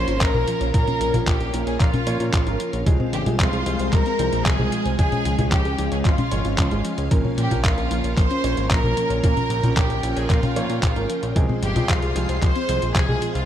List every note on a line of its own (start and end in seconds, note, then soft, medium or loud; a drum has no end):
0.00 0.31 F3 medium
0.00 0.31 A#3 medium
0.00 0.31 C#4 medium
0.00 2.83 C#4 medium
0.00 2.83 A#4 medium
0.00 0.21 C5 loud
0.00 0.31 C#5 loud
0.00 4.95 F5 medium
0.00 0.21 C6 medium
0.08 0.19 G#1 medium
0.08 0.20 F4 medium
0.08 closed hi-hat medium
0.21 0.32 A#1 loud
0.21 0.34 F3 medium
0.21 0.73 A#4 loud
0.21 0.74 A#5 medium
0.21 kick loud
0.21 clap loud
0.21 closed hi-hat medium
0.34 0.45 A#1 medium
0.34 0.71 F3 medium
0.34 0.71 A#3 medium
0.34 0.71 C#4 medium
0.34 0.71 A#4 loud
0.34 0.47 A#4 medium
0.34 high conga medium
0.48 0.60 F3 medium
0.48 closed hi-hat medium
0.61 0.72 A#1 medium
0.61 0.73 C#5 medium
0.61 closed hi-hat medium
0.74 0.85 A#2 loud
0.74 1.11 F3 loud
0.74 0.86 F3 medium
0.74 1.11 A#3 medium
0.74 1.11 C#4 medium
0.74 1.11 A#4 loud
0.74 1.24 A#4 loud
0.74 1.24 A#5 medium
0.74 kick loud
0.74 closed hi-hat medium
0.87 0.99 C#4 medium
0.87 closed hi-hat soft
0.87 high conga medium
1.01 1.12 A#1 loud
1.01 1.13 F3 medium
1.01 closed hi-hat medium
1.14 1.25 A#1 medium
1.14 1.38 F3 medium
1.14 1.38 A#3 medium
1.14 1.38 C#4 medium
1.14 1.26 F4 medium
1.14 1.38 A#4 loud
1.14 closed hi-hat medium
1.14 high conga medium
1.27 1.38 A#1 loud
1.27 1.40 F3 medium
1.27 1.64 G4 medium
1.27 1.65 G5 medium
1.27 kick loud
1.27 clap loud
1.27 closed hi-hat medium
1.40 1.51 A#1 medium
1.40 1.53 A#4 medium
1.40 closed hi-hat soft
1.54 1.65 A#1 medium
1.54 2.04 F3 medium
1.54 1.66 F3 medium
1.54 2.04 A#3 medium
1.54 2.04 C#4 medium
1.54 2.04 A#4 medium
1.54 closed hi-hat medium
1.67 1.78 A#1 medium
1.67 1.79 G#4 medium
1.67 1.79 C#5 medium
1.67 1.80 G#5 medium
1.67 closed hi-hat medium
1.80 1.91 A#2 loud
1.80 1.92 F3 medium
1.80 2.30 F4 loud
1.80 2.30 F5 medium
1.80 kick loud
1.80 clap medium
1.80 closed hi-hat medium
1.94 2.06 C#4 medium
1.94 closed hi-hat soft
1.94 high conga medium
2.07 2.18 A#2 medium
2.07 2.19 F3 medium
2.07 2.44 F3 medium
2.07 2.44 A#3 medium
2.07 2.44 C#4 medium
2.07 2.43 C#5 loud
2.07 closed hi-hat medium
2.20 2.31 A#2 medium
2.20 2.32 F4 medium
2.20 closed hi-hat medium
2.33 2.44 A#1 loud
2.33 2.46 F3 medium
2.33 2.71 F4 medium
2.33 2.71 F5 medium
2.33 kick loud
2.33 clap loud
2.33 closed hi-hat medium
2.46 2.58 G#1 medium
2.46 2.83 F3 medium
2.46 2.83 A#3 medium
2.46 2.83 C#4 medium
2.46 2.83 A#4 medium
2.46 2.59 A#4 medium
2.46 closed hi-hat soft
2.60 2.73 F3 medium
2.60 closed hi-hat medium
2.73 2.84 A#1 medium
2.73 2.85 C#5 medium
2.73 closed hi-hat medium
2.86 2.98 C2 loud
2.86 3.23 F3 loud
2.86 2.98 F3 medium
2.86 7.07 G#3 medium
2.86 3.23 G#3 loud
2.86 3.23 C4 medium
2.86 3.23 G#4 loud
2.86 4.97 C5 medium
2.86 4.97 C6 medium
2.86 kick loud
2.86 closed hi-hat medium
3.00 3.12 C4 medium
3.00 high conga medium
3.13 3.24 G1 medium
3.13 3.26 F3 medium
3.13 3.25 G4 loud
3.13 3.26 G5 medium
3.13 closed hi-hat medium
3.26 3.37 C2 medium
3.26 3.50 F3 medium
3.26 3.50 G#3 medium
3.26 3.50 C4 medium
3.26 3.38 F4 medium
3.26 3.50 G#4 loud
3.26 closed hi-hat medium
3.26 high conga medium
3.39 3.51 C2 loud
3.39 3.52 F3 medium
3.39 3.89 F4 loud
3.39 3.89 F5 medium
3.39 kick loud
3.39 clap loud
3.39 closed hi-hat medium
3.53 3.64 C2 medium
3.53 3.66 G#4 medium
3.53 closed hi-hat soft
3.66 3.77 C2 medium
3.66 4.16 F3 medium
3.66 3.79 F3 medium
3.66 4.16 G#3 medium
3.66 4.16 C4 medium
3.66 4.16 G#4 medium
3.66 closed hi-hat medium
3.79 3.90 C2 medium
3.79 3.91 C5 medium
3.79 closed hi-hat medium
3.93 4.04 C2 loud
3.93 4.05 F3 medium
3.93 4.46 A#4 loud
3.93 4.46 A#5 medium
3.93 kick loud
3.93 clap medium
3.93 closed hi-hat medium
4.06 4.18 C4 medium
4.06 closed hi-hat soft
4.19 4.30 C2 medium
4.19 4.56 F3 medium
4.19 4.32 F3 medium
4.19 4.56 G#3 medium
4.19 4.56 C4 medium
4.19 4.56 C5 loud
4.19 closed hi-hat medium
4.32 4.43 A#1 medium
4.32 4.45 F4 medium
4.32 closed hi-hat medium
4.46 4.57 C2 loud
4.46 4.58 F3 medium
4.46 4.98 G#4 loud
4.46 4.98 G#5 medium
4.46 kick loud
4.46 clap loud
4.46 closed hi-hat medium
4.59 4.70 C2 medium
4.59 4.96 F3 medium
4.59 4.96 G#3 medium
4.59 4.96 C4 medium
4.59 4.96 G#4 medium
4.59 4.72 G#4 medium
4.59 high conga medium
4.72 4.85 F3 medium
4.72 closed hi-hat medium
4.86 4.97 C2 medium
4.86 4.98 C5 medium
4.86 closed hi-hat medium
4.99 5.10 C#2 loud
4.99 5.36 F3 loud
4.99 5.11 F3 medium
4.99 5.36 G#3 medium
4.99 5.36 C#4 loud
4.99 11.32 C#4 medium
4.99 5.36 G#4 loud
4.99 5.48 G#4 loud
4.99 9.20 F5 medium
4.99 5.49 G#5 medium
4.99 kick loud
4.99 closed hi-hat medium
5.12 5.24 C#4 medium
5.12 closed hi-hat soft
5.12 high conga medium
5.25 5.36 C#2 loud
5.25 5.38 F3 medium
5.25 closed hi-hat medium
5.39 5.50 C#2 medium
5.39 5.63 F3 medium
5.39 5.63 G#3 medium
5.39 5.63 C#4 medium
5.39 5.51 F4 medium
5.39 5.63 G#4 loud
5.39 closed hi-hat soft
5.39 high conga medium
5.52 5.63 C#2 loud
5.52 5.65 F3 medium
5.52 5.92 G4 loud
5.52 5.92 G5 medium
5.52 kick loud
5.52 clap loud
5.52 closed hi-hat medium
5.65 5.76 C#2 medium
5.65 5.78 G#4 medium
5.65 closed hi-hat soft
5.78 5.90 C#2 medium
5.78 5.91 F3 medium
5.78 6.28 F3 medium
5.78 6.28 G#3 medium
5.78 6.28 C#4 medium
5.78 6.28 G#4 medium
5.78 closed hi-hat medium
5.92 6.03 C#2 medium
5.92 5.98 G#4 medium
5.92 6.04 C#5 medium
5.92 5.98 G#5 medium
5.92 closed hi-hat medium
6.05 6.16 G#1 loud
6.05 6.17 F3 medium
6.05 6.55 F4 loud
6.05 6.55 F5 medium
6.05 kick loud
6.05 clap medium
6.05 closed hi-hat medium
6.18 6.30 C#4 medium
6.18 closed hi-hat soft
6.18 high conga medium
6.31 6.43 G#1 medium
6.31 6.68 F3 medium
6.31 6.44 F3 medium
6.31 6.68 G#3 medium
6.31 6.68 C#4 medium
6.31 6.68 C#5 loud
6.31 closed hi-hat medium
6.45 6.56 G#1 medium
6.45 6.57 F4 medium
6.45 closed hi-hat soft
6.58 6.69 C#2 loud
6.58 6.71 F3 medium
6.58 6.95 F4 medium
6.58 6.96 F5 medium
6.58 kick loud
6.58 clap loud
6.58 closed hi-hat medium
6.71 6.83 G#1 medium
6.71 7.08 F3 medium
6.71 7.08 G#3 medium
6.71 7.08 C#4 medium
6.71 7.08 G#4 medium
6.71 6.84 G#4 medium
6.71 closed hi-hat soft
6.85 6.97 F3 medium
6.85 closed hi-hat medium
6.98 7.09 C#2 medium
6.98 7.10 C#5 medium
6.98 closed hi-hat medium
7.11 7.22 A#1 loud
7.11 7.48 F3 loud
7.11 7.23 F3 medium
7.11 7.48 A#3 medium
7.11 7.48 C#4 loud
7.11 11.32 A#4 medium
7.11 7.48 A#4 loud
7.11 kick loud
7.11 closed hi-hat medium
7.25 7.37 C#4 medium
7.25 high conga medium
7.38 7.49 A#2 loud
7.38 7.50 F3 medium
7.38 7.62 G4 loud
7.38 7.63 G5 medium
7.38 closed hi-hat medium
7.51 7.62 A#1 medium
7.51 7.75 F3 medium
7.51 7.75 A#3 medium
7.51 7.75 C#4 medium
7.51 7.63 F4 medium
7.51 7.75 A#4 loud
7.51 closed hi-hat medium
7.51 high conga medium
7.64 7.75 A#1 loud
7.64 7.77 F3 medium
7.64 8.14 F4 loud
7.64 8.14 F5 medium
7.64 kick loud
7.64 clap loud
7.64 closed hi-hat medium
7.77 7.89 A#1 medium
7.77 7.90 A#4 medium
7.77 closed hi-hat soft
7.91 8.02 A#1 loud
7.91 8.41 F3 medium
7.91 8.04 F3 medium
7.91 8.41 A#3 medium
7.91 8.41 C#4 medium
7.91 8.41 A#4 medium
7.91 closed hi-hat medium
8.04 8.15 A#1 medium
8.04 8.16 C#5 medium
8.04 closed hi-hat medium
8.17 8.28 A#1 loud
8.17 8.29 F3 medium
8.17 8.67 C5 loud
8.17 8.67 C6 loud
8.17 kick loud
8.17 clap medium
8.17 closed hi-hat medium
8.31 8.43 C#4 medium
8.31 closed hi-hat soft
8.44 8.55 A#1 medium
8.44 8.81 F3 medium
8.44 8.57 F3 medium
8.44 8.81 A#3 medium
8.44 8.81 C#4 medium
8.44 8.81 C#5 medium
8.44 closed hi-hat medium
8.57 8.68 G#1 medium
8.57 8.69 F4 medium
8.57 closed hi-hat soft
8.70 8.82 A#1 loud
8.70 8.83 F3 medium
8.70 9.22 A#4 loud
8.70 9.23 A#5 medium
8.70 kick loud
8.70 clap loud
8.70 closed hi-hat medium
8.84 8.95 A#1 medium
8.84 9.20 F3 medium
8.84 9.20 A#3 medium
8.84 9.20 C#4 medium
8.84 8.96 A#4 medium
8.84 9.21 A#4 loud
8.84 high conga medium
8.97 9.10 F3 medium
8.97 closed hi-hat medium
9.10 9.21 A#1 medium
9.10 9.22 C#5 medium
9.10 closed hi-hat medium
9.23 9.35 A#2 loud
9.23 9.60 F3 loud
9.23 9.36 F3 medium
9.23 9.60 A#3 medium
9.23 9.60 C#4 medium
9.23 9.73 A#4 loud
9.23 9.60 A#4 loud
9.23 11.34 G5 medium
9.23 9.73 A#5 medium
9.23 kick loud
9.23 closed hi-hat medium
9.37 9.49 C#4 medium
9.37 closed hi-hat soft
9.37 high conga medium
9.50 9.61 A#1 medium
9.50 9.63 F3 medium
9.50 closed hi-hat medium
9.63 9.74 A#1 medium
9.63 9.87 F3 medium
9.63 9.87 A#3 medium
9.63 9.87 C#4 medium
9.63 9.75 F4 medium
9.63 9.87 A#4 loud
9.63 closed hi-hat medium
9.63 high conga medium
9.76 9.88 A#1 loud
9.76 9.89 F3 medium
9.76 10.16 G4 loud
9.76 10.17 G5 medium
9.76 kick loud
9.76 clap loud
9.76 closed hi-hat medium
9.90 10.01 A#1 medium
9.90 10.03 A#4 medium
9.90 closed hi-hat soft
10.03 10.14 A#1 medium
10.03 10.16 F3 medium
10.03 10.53 F3 medium
10.03 10.53 A#3 medium
10.03 10.53 C#4 medium
10.03 10.53 A#4 medium
10.03 closed hi-hat medium
10.16 10.28 A#1 medium
10.16 10.30 G#4 medium
10.16 10.28 C#5 medium
10.16 10.30 G#5 medium
10.16 closed hi-hat medium
10.30 10.41 A#2 loud
10.30 10.42 F3 medium
10.30 10.82 F4 medium
10.30 10.83 F5 medium
10.30 kick loud
10.30 clap medium
10.30 closed hi-hat medium
10.43 10.55 C#4 medium
10.43 closed hi-hat soft
10.43 high conga medium
10.56 10.67 A#2 medium
10.56 10.69 F3 medium
10.56 10.93 F3 medium
10.56 10.93 A#3 medium
10.56 10.93 C#4 medium
10.56 10.93 C#5 loud
10.56 closed hi-hat medium
10.70 10.81 A#2 medium
10.70 10.82 F4 medium
10.70 closed hi-hat medium
10.83 10.94 A#1 loud
10.83 10.95 F3 medium
10.83 11.20 F4 medium
10.83 11.20 F5 medium
10.83 kick loud
10.83 clap loud
10.83 closed hi-hat medium
10.96 11.07 G#1 medium
10.96 11.33 F3 medium
10.96 11.33 A#3 medium
10.96 11.33 C#4 medium
10.96 11.09 A#4 medium
10.96 11.33 A#4 medium
10.96 closed hi-hat soft
11.10 11.22 F3 medium
11.10 closed hi-hat medium
11.23 11.34 A#1 medium
11.23 11.35 C#5 medium
11.23 closed hi-hat medium
11.36 11.47 C2 loud
11.36 11.73 F3 loud
11.36 11.48 F3 medium
11.36 11.73 G#3 loud
11.36 11.73 C4 medium
11.36 13.45 G#4 medium
11.36 11.73 G#4 loud
11.36 13.45 C5 medium
11.36 13.45 F5 medium
11.36 13.45 C6 medium
11.36 kick loud
11.36 closed hi-hat medium
11.49 11.61 C4 medium
11.49 high conga medium
11.63 11.74 G1 medium
11.63 11.75 F3 medium
11.63 11.87 G4 loud
11.63 11.88 G5 medium
11.63 closed hi-hat medium
11.76 11.87 C2 medium
11.76 12.00 F3 medium
11.76 12.00 G#3 medium
11.76 12.00 C4 medium
11.76 11.88 F4 medium
11.76 12.00 G#4 loud
11.76 closed hi-hat medium
11.76 high conga medium
11.89 12.00 C2 loud
11.89 12.02 F3 medium
11.89 12.42 F4 loud
11.89 12.43 F5 medium
11.89 kick loud
11.89 clap loud
11.89 closed hi-hat medium
12.02 12.13 C2 medium
12.02 12.15 G#4 medium
12.02 closed hi-hat soft
12.16 12.27 C2 medium
12.16 12.66 F3 medium
12.16 12.28 F3 medium
12.16 12.66 G#3 medium
12.16 12.66 C4 medium
12.16 12.66 G#4 medium
12.16 closed hi-hat medium
12.29 12.40 C2 medium
12.29 12.41 C5 medium
12.29 closed hi-hat medium
12.42 12.53 C2 loud
12.42 12.54 F3 medium
12.42 12.92 C5 loud
12.42 12.92 C6 loud
12.42 kick loud
12.42 clap medium
12.42 closed hi-hat medium
12.56 12.68 C4 medium
12.56 closed hi-hat soft
12.69 12.80 C2 medium
12.69 13.05 F3 medium
12.69 12.82 F3 medium
12.69 13.05 G#3 medium
12.69 13.05 C4 medium
12.69 13.05 C5 loud
12.69 closed hi-hat medium
12.82 12.93 A#1 medium
12.82 12.94 F4 medium
12.82 closed hi-hat medium
12.95 13.06 C2 loud
12.95 13.08 F3 medium
12.95 13.32 G#4 loud
12.95 13.33 G#5 medium
12.95 kick loud
12.95 clap loud
12.95 closed hi-hat medium
13.09 13.20 C2 medium
13.09 13.45 F3 medium
13.09 13.45 G#3 medium
13.09 13.45 C4 medium
13.09 13.45 G#4 loud
13.09 13.21 G#4 medium
13.09 high conga medium
13.22 13.35 F3 medium
13.22 closed hi-hat medium
13.35 13.45 C2 medium
13.35 13.45 F4 medium
13.35 13.45 C5 medium
13.35 13.45 F5 medium
13.35 closed hi-hat medium